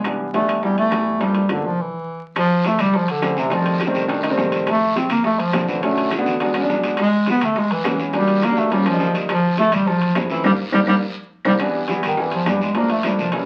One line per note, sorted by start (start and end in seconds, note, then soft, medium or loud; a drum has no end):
0.00 0.42 C2 medium
0.04 0.25 E3 medium
0.04 0.25 G3 medium
0.04 0.25 B3 medium
0.04 0.25 D4 medium
0.04 high bongo medium
0.04 high conga soft
0.04 high timbale medium
0.04 claves medium
0.20 high conga soft
0.34 0.54 E3 medium
0.34 0.54 G3 medium
0.34 0.60 A3 medium
0.34 0.54 B3 medium
0.34 0.54 D4 medium
0.34 high bongo medium
0.34 high conga medium
0.34 high timbale medium
0.48 0.88 G2 medium
0.48 high conga soft
0.48 high timbale medium
0.48 claves medium
0.63 0.83 E3 medium
0.63 0.83 G3 medium
0.63 0.77 G3 medium
0.63 0.83 B3 medium
0.63 0.83 E4 medium
0.63 high bongo medium
0.63 high conga soft
0.76 1.23 A3 loud
0.76 high conga soft
0.76 high timbale medium
0.91 1.58 G2 medium
0.91 1.12 E3 medium
0.91 1.12 G3 medium
0.91 1.11 B3 medium
0.91 1.12 E4 medium
0.91 high bongo medium
0.91 low bongo medium
0.91 high conga medium
0.91 high timbale medium
0.91 claves medium
1.05 high conga soft
1.19 1.40 F3 medium
1.19 1.50 G3 medium
1.19 1.40 A3 medium
1.19 1.40 A#3 medium
1.19 1.40 D4 medium
1.19 high bongo medium
1.19 high timbale medium
1.34 high bongo soft
1.34 high timbale medium
1.49 1.66 D3 medium
1.49 1.69 F3 medium
1.49 1.69 A3 medium
1.49 1.69 A#3 medium
1.49 1.69 D4 medium
1.49 high bongo medium
1.49 high conga medium
1.49 high timbale medium
1.49 claves medium
1.64 1.91 C2 medium
1.64 1.83 F3 medium
1.64 high bongo soft
1.81 2.23 E3 medium
2.36 2.76 F2 medium
2.36 2.69 F3 loud
2.36 high bongo medium
2.36 high conga soft
2.36 high timbale medium
2.36 long guiro medium
2.36 claves medium
2.64 2.82 A3 loud
2.64 high bongo medium
2.64 high conga medium
2.64 high timbale medium
2.64 short guiro medium
2.78 3.19 C2 medium
2.78 2.98 G3 loud
2.78 high conga soft
2.78 low conga medium
2.78 high timbale medium
2.78 short guiro medium
2.78 claves medium
2.93 3.12 F3 medium
2.93 high bongo medium
2.93 long guiro medium
3.08 3.40 D3 medium
3.08 high conga soft
3.08 high timbale medium
3.22 3.89 F2 medium
3.22 3.32 E3 medium
3.22 3.33 G3 medium
3.22 3.32 A3 medium
3.22 3.33 C4 medium
3.22 high bongo medium
3.22 low bongo medium
3.22 high conga medium
3.22 high timbale medium
3.22 short guiro medium
3.22 claves medium
3.37 3.55 C3 medium
3.37 3.47 E3 medium
3.37 3.47 G3 medium
3.37 3.47 A3 medium
3.37 3.47 C4 medium
3.37 short guiro medium
3.50 3.77 D#3 medium
3.50 3.82 F3 medium
3.50 3.77 G3 medium
3.50 3.77 A3 medium
3.50 3.77 C4 medium
3.50 high bongo medium
3.50 high timbale medium
3.50 long guiro medium
3.66 high bongo soft
3.66 high timbale medium
3.79 high bongo medium
3.79 high conga medium
3.79 high timbale medium
3.79 short guiro medium
3.79 claves medium
3.87 4.02 D#3 medium
3.87 4.02 G3 medium
3.87 4.03 A3 medium
3.87 4.02 C4 loud
3.94 4.35 C2 medium
3.94 high bongo soft
3.94 short guiro medium
4.08 4.19 D#3 medium
4.08 4.19 G3 medium
4.08 4.19 A3 medium
4.08 4.19 D4 loud
4.08 high bongo medium
4.08 high conga soft
4.08 high timbale medium
4.08 long guiro medium
4.23 4.28 D#3 medium
4.23 4.28 G3 medium
4.23 4.29 A3 medium
4.23 4.29 D#4 medium
4.23 high conga soft
4.23 high timbale medium
4.23 claves medium
4.30 4.67 D#3 medium
4.30 4.67 G3 medium
4.30 4.67 A3 medium
4.30 4.67 C4 loud
4.37 5.05 A#1 medium
4.37 high bongo medium
4.37 low bongo medium
4.37 high conga medium
4.37 low timbale medium
4.37 short guiro medium
4.52 high bongo soft
4.52 high conga soft
4.52 high timbale medium
4.52 short guiro medium
4.66 4.98 A3 loud
4.66 high bongo medium
4.66 high conga soft
4.66 high timbale medium
4.66 long guiro medium
4.66 claves medium
4.82 high conga soft
4.96 5.10 C4 loud
4.96 high bongo medium
4.96 high conga medium
4.96 high timbale medium
4.96 short guiro medium
5.10 5.50 F2 medium
5.10 5.24 A#3 loud
5.10 high conga soft
5.10 low conga medium
5.10 high timbale medium
5.10 short guiro medium
5.10 claves medium
5.24 5.41 A3 loud
5.24 high bongo medium
5.24 high conga soft
5.24 long guiro medium
5.39 5.70 F3 loud
5.39 high timbale medium
5.53 6.20 B1 medium
5.53 5.64 D3 medium
5.53 5.64 F3 medium
5.53 5.64 A3 medium
5.53 5.64 C4 medium
5.53 high bongo medium
5.53 low bongo medium
5.53 high conga medium
5.53 high timbale medium
5.53 low timbale medium
5.53 short guiro medium
5.53 claves medium
5.67 5.78 D3 medium
5.67 5.85 E3 medium
5.67 5.78 F3 medium
5.67 5.78 A3 medium
5.67 5.78 C4 medium
5.67 high conga soft
5.67 short guiro medium
5.82 6.07 D3 medium
5.82 6.08 F#3 medium
5.82 6.07 A3 medium
5.82 6.12 A3 medium
5.82 6.08 C#4 medium
5.82 high bongo medium
5.82 high conga soft
5.82 high timbale medium
5.82 long guiro medium
5.97 high bongo soft
5.97 high conga soft
5.97 high timbale medium
6.11 high bongo medium
6.11 high conga medium
6.11 high timbale medium
6.11 short guiro medium
6.11 claves medium
6.18 6.34 D3 medium
6.18 6.34 F#3 medium
6.18 6.34 A3 medium
6.18 6.34 B3 loud
6.26 6.66 E2 medium
6.26 high bongo soft
6.26 short guiro medium
6.40 6.50 F#3 medium
6.40 6.50 G#3 medium
6.40 6.51 B3 medium
6.40 6.50 D4 medium
6.40 high bongo medium
6.40 high conga soft
6.40 high timbale medium
6.40 long guiro medium
6.54 6.60 F#3 medium
6.54 6.60 G#3 medium
6.54 6.60 B3 medium
6.54 6.60 C#4 medium
6.54 high conga soft
6.54 high timbale medium
6.54 claves medium
6.61 6.98 F#3 medium
6.61 6.98 G#3 medium
6.61 6.98 B3 medium
6.61 6.98 D4 loud
6.69 7.36 A1 medium
6.69 high bongo medium
6.69 low bongo medium
6.69 high conga medium
6.69 short guiro medium
6.83 high bongo soft
6.83 high conga soft
6.83 high timbale medium
6.83 short guiro medium
6.97 7.26 G#3 loud
6.97 high bongo medium
6.97 high conga soft
6.97 high timbale medium
6.97 long guiro medium
6.97 claves medium
7.13 high conga soft
7.26 7.46 B3 loud
7.26 high bongo medium
7.26 high conga loud
7.26 high timbale medium
7.26 short guiro medium
7.40 7.82 E2 medium
7.40 7.60 A3 loud
7.40 high conga soft
7.40 low conga medium
7.40 high timbale medium
7.40 short guiro medium
7.40 claves medium
7.55 7.74 G#3 medium
7.55 high bongo medium
7.55 high conga soft
7.55 long guiro medium
7.70 8.00 E3 medium
7.70 high conga soft
7.70 high timbale medium
7.83 8.51 E2 medium
7.83 7.94 E3 medium
7.83 7.94 G#3 medium
7.83 7.94 B3 medium
7.83 7.94 C#4 medium
7.83 high bongo medium
7.83 low bongo medium
7.83 high conga medium
7.83 high timbale medium
7.83 low timbale medium
7.83 short guiro medium
7.83 claves medium
7.98 8.09 E3 medium
7.98 8.09 G#3 medium
7.98 8.09 B3 medium
7.98 8.09 C#4 medium
7.98 high conga soft
7.98 short guiro medium
8.13 8.38 F#3 medium
8.13 8.39 G3 medium
8.13 8.45 G3 medium
8.13 8.39 A#3 medium
8.13 8.39 D4 medium
8.13 high bongo medium
8.13 high conga soft
8.13 high timbale medium
8.13 long guiro medium
8.28 high bongo soft
8.28 high timbale medium
8.42 8.59 A#3 loud
8.42 high bongo medium
8.42 high conga medium
8.42 high timbale medium
8.42 short guiro medium
8.42 claves medium
8.49 8.65 F#3 medium
8.49 8.65 G3 medium
8.49 8.65 A#3 medium
8.49 8.65 D4 medium
8.56 8.97 D#2 medium
8.56 8.74 A3 medium
8.56 high bongo soft
8.56 short guiro medium
8.70 8.81 F3 medium
8.70 8.81 G3 medium
8.70 8.89 G3 medium
8.70 8.81 A#3 medium
8.70 8.81 C#4 medium
8.70 high bongo medium
8.70 high conga soft
8.70 high timbale medium
8.70 long guiro medium
8.86 8.91 F3 medium
8.86 9.15 F3 medium
8.86 8.91 G3 medium
8.86 8.91 A#3 medium
8.86 8.91 C#4 medium
8.86 high timbale medium
8.86 claves medium
8.93 9.29 F3 medium
8.93 9.29 G3 medium
8.93 9.29 A#3 medium
8.93 9.29 D#4 medium
8.99 9.67 D2 medium
8.99 high bongo medium
8.99 low bongo medium
8.99 high conga medium
8.99 short guiro medium
9.14 high bongo soft
9.14 high conga soft
9.14 high timbale medium
9.14 short guiro medium
9.29 9.57 F3 medium
9.29 high bongo medium
9.29 high conga soft
9.29 high timbale medium
9.29 long guiro medium
9.29 claves medium
9.57 9.75 A3 loud
9.57 high bongo medium
9.57 high conga medium
9.57 high timbale medium
9.57 short guiro medium
9.72 10.13 A1 medium
9.72 9.89 G3 medium
9.72 high conga soft
9.72 low conga medium
9.72 high timbale medium
9.72 short guiro medium
9.72 claves medium
9.86 10.16 F3 medium
9.86 high bongo medium
9.86 long guiro medium
10.01 high conga soft
10.01 high timbale medium
10.15 10.42 G1 medium
10.15 10.26 F3 medium
10.15 10.26 A3 medium
10.15 10.26 C4 medium
10.15 10.26 E4 medium
10.15 high bongo medium
10.15 low bongo medium
10.15 high conga medium
10.15 high timbale medium
10.15 low timbale medium
10.15 short guiro medium
10.15 claves medium
10.30 10.43 E3 medium
10.30 10.40 F3 medium
10.30 10.40 A3 medium
10.30 10.40 C4 medium
10.30 10.40 E4 medium
10.30 short guiro medium
10.44 10.55 G1 medium
10.44 10.54 G3 loud
10.44 10.52 G3 loud
10.44 10.54 A#3 loud
10.44 10.54 D4 medium
10.44 low bongo loud
10.44 high conga medium
10.44 high timbale loud
10.44 long guiro medium
10.44 claves medium
10.72 10.84 G1 loud
10.72 10.83 G3 medium
10.72 10.81 G3 medium
10.72 10.83 A#3 medium
10.72 10.82 D4 loud
10.72 low bongo loud
10.72 high conga loud
10.72 high timbale loud
10.72 long guiro loud
10.72 claves loud
10.87 10.99 G1 medium
10.87 10.95 G3 loud
10.87 10.98 G3 medium
10.87 10.97 A#3 medium
10.87 10.97 D4 medium
10.87 low bongo loud
10.87 high conga loud
10.87 high timbale loud
10.87 long guiro medium
10.87 claves loud
11.45 11.56 C2 medium
11.45 11.55 G3 medium
11.45 11.53 G3 medium
11.45 11.55 A#3 medium
11.45 11.55 C4 medium
11.45 low bongo loud
11.45 high conga medium
11.45 high timbale loud
11.45 long guiro loud
11.45 claves loud
11.59 11.80 E3 medium
11.59 11.80 G3 medium
11.59 11.80 B3 medium
11.59 11.80 D4 loud
11.59 high bongo medium
11.59 high timbale medium
11.59 long guiro medium
11.59 claves medium
11.75 high conga soft
11.88 12.09 E3 medium
11.88 12.09 G3 medium
11.88 12.09 B3 medium
11.88 12.09 E4 medium
11.88 high bongo medium
11.88 high conga medium
11.88 high timbale medium
11.88 short guiro medium
12.03 12.43 G2 medium
12.03 12.22 D#3 medium
12.03 high conga soft
12.03 low conga medium
12.03 high timbale medium
12.03 short guiro medium
12.03 claves medium
12.17 12.38 E3 medium
12.17 12.33 E3 medium
12.17 12.38 G3 medium
12.17 12.38 B3 medium
12.17 12.38 E4 medium
12.17 high bongo medium
12.17 high conga soft
12.17 long guiro medium
12.32 12.51 F3 medium
12.32 high conga soft
12.32 high timbale medium
12.46 13.13 G2 medium
12.46 12.67 E3 medium
12.46 12.67 G3 medium
12.46 12.62 G3 medium
12.46 12.67 B3 medium
12.46 12.67 D4 medium
12.46 high bongo medium
12.46 low bongo medium
12.46 high conga medium
12.46 high timbale medium
12.46 low timbale medium
12.46 short guiro medium
12.46 claves medium
12.61 12.79 G#3 medium
12.61 high conga soft
12.61 short guiro medium
12.75 12.96 F3 medium
12.75 12.96 A3 medium
12.75 12.96 A#3 medium
12.75 12.90 A#3 medium
12.75 12.96 D4 medium
12.75 high bongo medium
12.75 high conga soft
12.75 high timbale medium
12.75 long guiro medium
12.89 13.08 A3 medium
12.89 high bongo soft
12.89 high conga soft
12.89 high timbale medium
13.03 13.25 F3 medium
13.03 13.19 G3 medium
13.03 13.25 A3 medium
13.03 13.24 A#3 medium
13.03 13.25 D4 medium
13.03 high bongo medium
13.03 high conga medium
13.03 high timbale medium
13.03 short guiro medium
13.03 claves medium
13.18 13.46 C2 medium
13.18 13.34 F3 medium
13.18 high bongo soft
13.18 short guiro medium
13.32 13.46 E3 medium
13.32 13.46 G3 medium
13.32 13.46 A#3 medium
13.32 13.46 C#4 medium
13.32 high bongo medium
13.32 high conga soft
13.32 high timbale medium
13.32 long guiro medium